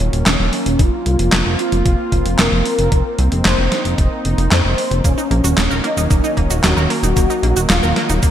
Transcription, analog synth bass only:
0.00 D#1
0.13 D#1
0.26 D#1
0.40 D#1
0.66 D#1
0.79 F1
1.06 C2
1.19 F1
1.33 F1
1.46 F1
1.72 F1
1.86 F1
2.12 F1
2.25 F1
2.39 F1
2.52 F1
2.79 F1
2.92 F1
3.19 C2
3.32 F1
3.45 F1
3.58 F1
3.85 F1
3.98 F1
4.25 F1
4.38 F1
4.51 F2
4.64 F1
4.91 F1
5.04 D#1
5.31 A#1
5.44 D#1
5.57 D#1
5.71 D#1
5.97 D#1
6.10 D#1
6.37 D#1
6.50 D#1
6.63 D#1
6.76 D#1
7.03 D#1
7.17 D#1
7.43 A#1
7.56 D#1
7.70 D#1
7.83 D#1
8.10 D#1
8.23 D#1

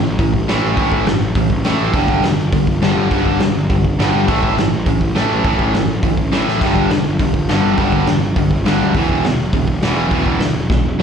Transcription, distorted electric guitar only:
0.20 A2 E3
0.48 A2 E3 A3
0.78 A2 E3 A3
1.06 A2 E3
1.37 A2 E3
1.66 A2 E3 A3
1.95 G2 D3 G3
2.24 G2 D3
2.53 G2 D3
2.82 G2 D3 G3
3.11 G2 D3 G3
3.41 G2 D3
3.70 G2 D3
3.99 G2 D3 G3
4.28 A2 E3 A3
4.58 A2 E3
4.87 A2 E3
5.15 A2 E3 A3
5.45 A2 E3 A3
5.74 A2 E3
6.03 A2 E3
6.32 A2 E3 A3
6.61 G2 D3 G3
6.91 G2 D3
7.20 G2 D3
7.49 G2 D3 G3
7.78 G2 D3 G3
8.08 G2 D3
8.37 G2 D3
8.66 G2 D3 G3
8.95 E2 B2 E3
9.25 E2 B2
9.54 E2 B2
9.83 E2 B2 E3
10.12 E2 B2 E3
10.41 E2 B2
10.70 E2 B2
10.99 E2

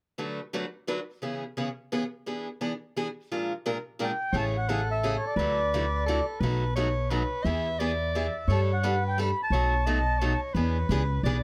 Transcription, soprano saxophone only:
4.33 C#5
4.69 A4
5.37 B4
6.06 A4
6.40 B4
6.76 C#5
7.11 B4
7.45 E5
7.79 D5
8.48 C#5
8.85 B4
9.52 C#5
9.86 D#5
10.19 C#5
10.54 B4
11.24 D5

